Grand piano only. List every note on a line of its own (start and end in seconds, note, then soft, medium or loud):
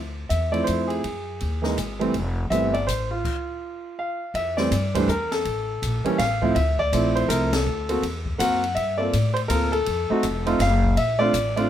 0.29 0.51 E5 medium
0.52 1.00 F3 soft
0.52 1.01 A3 soft
0.52 1.01 C4 soft
0.52 1.01 E4 medium
0.52 0.65 D5 medium
0.64 0.89 C5 medium
0.87 1.95 G#4 medium
1.62 1.75 E3 medium
1.62 1.76 G#3 medium
1.62 1.76 A#3 soft
1.62 1.76 D#4 medium
1.99 2.12 E3 medium
1.99 2.12 G3 medium
1.99 2.13 A3 medium
1.99 2.13 C4 medium
2.50 2.72 E3 medium
2.50 2.72 G3 soft
2.50 2.72 A3 soft
2.50 2.72 C4 medium
2.50 2.75 E5 medium
2.74 2.87 D5 medium
2.87 3.09 C5 medium
3.11 4.17 F4 medium
3.99 4.33 F5 medium
4.35 4.56 E5 medium
4.57 4.70 E3 medium
4.57 4.70 G3 soft
4.57 4.71 A3 soft
4.57 4.71 C4 medium
4.57 4.96 D5 medium
4.94 5.07 E3 medium
4.94 5.07 G3 medium
4.94 5.08 A3 medium
4.94 5.08 D4 medium
4.94 5.08 C5 medium
5.09 5.30 A#4 medium
5.32 6.21 A4 medium
6.04 6.17 E3 medium
6.04 6.17 G3 medium
6.04 6.18 A#3 medium
6.04 6.18 C#4 medium
6.18 6.56 F5 medium
6.42 6.54 F3 medium
6.42 6.55 A3 medium
6.42 6.55 C4 medium
6.42 6.55 E4 medium
6.55 6.79 E5 medium
6.79 7.17 D5 loud
6.93 7.27 F3 medium
6.93 7.27 A3 medium
6.93 7.28 C4 medium
6.93 7.29 E4 medium
7.15 7.29 C5 medium
7.29 7.50 F3 medium
7.29 7.50 A3 soft
7.29 7.50 C4 soft
7.29 7.51 E4 medium
7.29 7.53 A#4 medium
7.53 7.89 A4 medium
7.89 8.01 A#3 medium
7.89 8.01 C4 medium
7.89 8.02 F#4 medium
7.89 8.02 A4 medium
8.38 8.60 A#3 medium
8.38 8.60 C4 soft
8.38 8.60 F#4 soft
8.38 8.60 A#4 medium
8.38 8.73 F#5 medium
8.75 8.99 E5 medium
8.98 9.11 A#3 soft
8.98 9.11 C4 soft
8.98 9.12 F4 soft
8.98 9.12 A4 medium
8.98 9.36 D5 medium
9.34 9.39 C5 medium
9.48 9.70 A#3 medium
9.48 9.70 C4 soft
9.48 9.71 F4 soft
9.48 9.71 A4 medium
9.48 9.73 A#4 medium
9.72 10.62 A4 loud
10.10 10.22 A3 medium
10.10 10.22 C4 medium
10.10 10.23 D#4 medium
10.10 10.23 F#4 medium
10.46 10.58 A3 medium
10.46 10.58 C4 medium
10.46 10.59 D#4 medium
10.46 10.59 F4 medium
10.61 10.98 F5 medium
10.97 11.21 E5 medium
11.19 11.32 A3 medium
11.19 11.32 C4 medium
11.19 11.32 D4 medium
11.19 11.33 F4 medium
11.19 11.53 D5 loud
11.56 11.69 A3 medium
11.56 11.69 C4 medium
11.56 11.69 D4 medium
11.56 11.70 F4 medium
11.56 11.70 D5 medium